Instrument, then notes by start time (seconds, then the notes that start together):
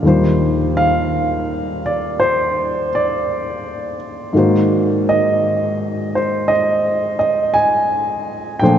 grand piano
0.02 D#2 D#3 G3 F4
0.07 C5
0.77 F5
1.86 D5
2.20 C5
2.95 D5
4.33 G#2 D#3 A#3 F#4
4.38 C5
5.09 D#5
6.15 C5
6.48 D#5
7.19 D#5
7.54 G#5
8.60 A#2 F3 A3 D4 C5 G5